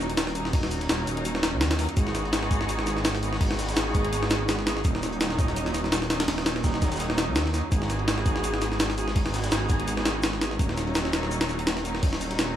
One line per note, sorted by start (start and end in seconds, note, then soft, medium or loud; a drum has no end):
0.00 0.52 D#1 loud
0.00 0.33 F#3 medium
0.00 0.33 A#3 medium
0.00 0.34 C#4 medium
0.00 0.33 D#4 loud
0.00 shaker medium
0.10 open hi-hat medium
0.17 snare loud
0.17 open hi-hat loud
0.17 shaker medium
0.27 snare medium
0.27 closed hi-hat soft
0.35 0.51 F#3 medium
0.35 0.52 A#3 medium
0.35 0.52 C#4 medium
0.35 0.52 D#4 loud
0.35 open hi-hat medium
0.35 shaker medium
0.45 snare soft
0.53 0.88 D#1 loud
0.53 1.77 F#3 medium
0.53 1.77 A#3 medium
0.53 1.77 C#4 medium
0.53 1.77 D#4 loud
0.53 kick loud
0.53 open hi-hat medium
0.63 snare medium
0.71 open hi-hat medium
0.71 shaker medium
0.81 snare soft
0.81 closed hi-hat soft
0.89 1.06 D#1 loud
0.89 snare loud
0.89 open hi-hat medium
0.89 shaker medium
1.07 1.54 D#1 medium
1.07 open hi-hat medium
1.07 shaker medium
1.17 closed hi-hat soft
1.25 open hi-hat medium
1.25 shaker medium
1.35 snare medium
1.35 snare soft
1.43 snare medium
1.43 snare loud
1.43 open hi-hat medium
1.43 shaker medium
1.53 1.87 D#2 medium
1.61 snare loud
1.61 open hi-hat medium
1.61 shaker medium
1.71 snare loud
1.71 open hi-hat medium
1.79 1.89 F#3 medium
1.79 1.89 A#3 medium
1.79 1.89 C#4 medium
1.79 1.89 D#4 loud
1.79 snare soft
1.79 open hi-hat medium
1.79 shaker medium
1.89 closed hi-hat soft
1.97 2.50 G#1 loud
1.97 3.21 B3 medium
1.97 3.21 D#4 medium
1.97 3.21 F#4 medium
1.97 3.21 G#4 loud
1.97 kick loud
1.97 open hi-hat medium
1.97 shaker medium
2.07 snare soft
2.15 snare soft
2.15 open hi-hat medium
2.15 shaker medium
2.25 closed hi-hat soft
2.33 snare loud
2.33 open hi-hat medium
2.33 shaker medium
2.43 snare soft
2.51 3.40 G#1 loud
2.51 kick loud
2.51 open hi-hat medium
2.51 shaker medium
2.61 snare soft
2.69 open hi-hat medium
2.69 shaker medium
2.79 snare medium
2.86 snare medium
2.86 open hi-hat medium
2.86 shaker medium
2.97 snare soft
3.05 snare loud
3.05 open hi-hat loud
3.05 shaker medium
3.06 snare loud
3.15 snare soft
3.15 closed hi-hat medium
3.23 3.39 B3 medium
3.23 3.39 D#4 medium
3.23 3.39 F#4 medium
3.23 3.39 G#4 loud
3.23 open hi-hat medium
3.23 shaker medium
3.33 snare soft
3.33 snare medium
3.41 3.75 G#1 loud
3.41 4.65 B3 medium
3.41 4.65 D#4 medium
3.41 4.65 F#4 medium
3.41 4.65 G#4 loud
3.41 kick loud
3.41 open hi-hat medium
3.51 snare medium
3.59 snare loud
3.59 open hi-hat medium
3.59 shaker medium
3.69 snare loud
3.69 closed hi-hat soft
3.69 shaker medium
3.76 3.93 G#1 loud
3.76 snare loud
3.76 open hi-hat medium
3.76 shaker medium
3.95 4.83 G#1 loud
3.95 kick medium
3.95 open hi-hat medium
3.95 shaker medium
4.05 closed hi-hat soft
4.13 open hi-hat medium
4.13 shaker medium
4.23 snare medium
4.23 snare soft
4.30 snare medium
4.30 snare loud
4.30 open hi-hat medium
4.30 shaker medium
4.49 snare loud
4.49 open hi-hat medium
4.49 shaker medium
4.59 snare soft
4.67 4.83 B3 medium
4.67 4.83 D#4 medium
4.67 4.83 F#4 medium
4.67 4.83 G#4 loud
4.67 snare loud
4.67 open hi-hat medium
4.67 shaker medium
4.77 snare soft
4.84 5.37 D#1 loud
4.84 6.09 F#3 medium
4.84 6.09 A#3 medium
4.84 6.09 C#4 medium
4.84 6.09 D#4 loud
4.84 kick loud
4.84 open hi-hat medium
4.84 shaker medium
4.95 snare soft
5.02 snare soft
5.02 open hi-hat medium
5.02 shaker medium
5.12 closed hi-hat soft
5.21 snare loud
5.21 open hi-hat medium
5.21 shaker medium
5.30 snare soft
5.38 6.27 D#1 loud
5.38 kick loud
5.38 open hi-hat medium
5.38 shaker medium
5.48 snare soft
5.56 open hi-hat medium
5.56 shaker medium
5.66 snare medium
5.74 snare medium
5.74 open hi-hat medium
5.74 shaker medium
5.84 snare soft
5.92 snare loud
5.92 open hi-hat loud
5.92 shaker medium
6.02 snare soft
6.02 closed hi-hat soft
6.10 6.26 F#3 medium
6.10 6.26 A#3 medium
6.10 6.26 C#4 medium
6.10 6.26 D#4 medium
6.10 snare loud
6.10 open hi-hat medium
6.10 shaker medium
6.20 snare medium
6.20 snare loud
6.20 open hi-hat medium
6.28 6.63 D#1 loud
6.28 7.52 F#3 medium
6.28 7.52 A#3 medium
6.28 7.52 C#4 medium
6.28 7.52 D#4 loud
6.28 snare loud
6.28 open hi-hat medium
6.38 snare medium
6.46 snare loud
6.46 open hi-hat medium
6.46 shaker medium
6.56 snare soft
6.64 6.80 D#1 loud
6.64 kick medium
6.64 snare loud
6.64 open hi-hat medium
6.64 shaker medium
6.74 snare soft
6.82 7.29 D#1 loud
6.82 kick medium
6.82 snare loud
6.82 open hi-hat medium
6.82 shaker medium
6.92 snare medium
6.92 closed hi-hat soft
6.92 shaker medium
6.96 snare medium
6.96 shaker medium
6.99 snare loud
6.99 open hi-hat medium
6.99 shaker medium
7.10 snare medium
7.10 snare soft
7.17 snare medium
7.17 snare loud
7.17 open hi-hat medium
7.17 shaker medium
7.28 7.62 D#2 medium
7.35 snare loud
7.35 open hi-hat medium
7.35 shaker medium
7.46 snare soft
7.54 7.64 F#3 medium
7.54 7.64 A#3 medium
7.54 7.64 C#4 medium
7.54 7.64 D#4 loud
7.54 snare soft
7.54 open hi-hat medium
7.54 shaker medium
7.72 8.24 G#1 loud
7.72 8.96 B3 medium
7.72 8.96 D#4 medium
7.72 8.96 F#4 medium
7.72 8.96 G#4 loud
7.72 kick loud
7.72 open hi-hat medium
7.72 shaker medium
7.82 snare soft
7.90 snare soft
7.90 open hi-hat medium
7.90 shaker medium
7.99 closed hi-hat soft
8.08 snare loud
8.08 open hi-hat medium
8.08 shaker medium
8.18 snare soft
8.26 9.14 G#1 medium
8.26 kick loud
8.26 open hi-hat medium
8.26 shaker medium
8.36 snare soft
8.44 open hi-hat medium
8.44 shaker loud
8.54 snare medium
8.61 snare medium
8.61 open hi-hat medium
8.61 shaker medium
8.72 snare soft
8.80 snare loud
8.80 open hi-hat medium
8.80 shaker medium
8.90 snare soft
8.90 closed hi-hat soft
8.97 9.14 B3 medium
8.97 9.14 D#4 medium
8.97 9.14 F#4 medium
8.97 9.14 G#4 loud
8.97 open hi-hat medium
8.97 shaker medium
9.08 snare soft
9.15 9.50 G#1 loud
9.15 10.39 B3 loud
9.15 10.39 D#4 medium
9.15 10.39 F#4 medium
9.15 10.39 G#4 loud
9.15 kick loud
9.15 open hi-hat medium
9.26 snare medium
9.34 snare loud
9.34 open hi-hat medium
9.34 shaker medium
9.43 snare loud
9.43 closed hi-hat soft
9.43 shaker medium
9.51 9.68 G#1 loud
9.51 snare loud
9.51 open hi-hat medium
9.51 shaker medium
9.69 10.58 G#1 loud
9.69 kick medium
9.69 open hi-hat medium
9.69 shaker medium
9.80 closed hi-hat soft
9.87 open hi-hat medium
9.87 shaker medium
9.97 snare soft
9.97 snare medium
10.05 snare loud
10.05 snare medium
10.05 open hi-hat medium
10.05 shaker medium
10.23 snare loud
10.23 open hi-hat medium
10.23 shaker medium
10.33 snare soft
10.41 10.57 B3 medium
10.41 10.57 D#4 medium
10.41 10.58 F#4 medium
10.41 10.57 G#4 loud
10.41 snare loud
10.41 open hi-hat medium
10.41 shaker medium
10.51 snare soft
10.59 11.12 D#1 loud
10.59 11.83 F#3 medium
10.59 11.83 A#3 medium
10.59 11.83 C#4 medium
10.59 11.83 D#4 loud
10.59 kick loud
10.59 open hi-hat medium
10.59 shaker medium
10.69 snare soft
10.77 snare medium
10.77 open hi-hat medium
10.77 shaker medium
10.87 closed hi-hat soft
10.95 snare loud
10.95 open hi-hat medium
10.95 shaker medium
11.05 snare medium
11.13 12.02 D#1 medium
11.13 snare loud
11.13 open hi-hat medium
11.13 shaker medium
11.23 snare soft
11.31 open hi-hat medium
11.31 shaker loud
11.41 snare loud
11.41 open hi-hat medium
11.49 snare soft
11.49 shaker medium
11.59 open hi-hat medium
11.67 snare loud
11.67 open hi-hat medium
11.67 shaker medium
11.77 snare medium
11.77 closed hi-hat soft
11.85 12.01 F#3 medium
11.85 12.01 A#3 medium
11.85 12.01 C#4 medium
11.85 12.01 D#4 loud
11.85 open hi-hat medium
11.85 shaker medium
11.95 snare soft
11.95 snare medium
12.03 12.38 D#1 loud
12.03 12.56 F#3 loud
12.03 12.56 A#3 medium
12.03 12.56 C#4 medium
12.03 12.56 D#4 loud
12.03 kick loud
12.03 open hi-hat medium
12.13 snare medium
12.21 open hi-hat medium
12.21 shaker medium
12.31 snare soft
12.31 closed hi-hat soft
12.39 12.55 D#1 loud
12.39 snare loud
12.39 open hi-hat medium
12.39 shaker medium